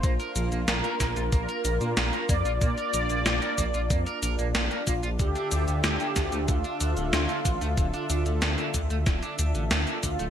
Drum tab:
HH |xxxxxxxxxxxxxxxx|xxxxxxxxxxxxxxxx|xxxxxxxxxxxxxxxx|xxxxxxxxxxxxxxxx|
SH |xxxxxxxxxxxxxxxx|xxxxxxxxxxxxxxxx|xxxxxxxxxxxxxxxx|xxxxxxxxxxxxxxxx|
SD |----o-o-----o---|----o-------o---|----o-o-----o---|----o---o---o---|
BD |o-----o-o-----o-|o-----o-o-----o-|o-----o-o-----o-|o-----o-o-----o-|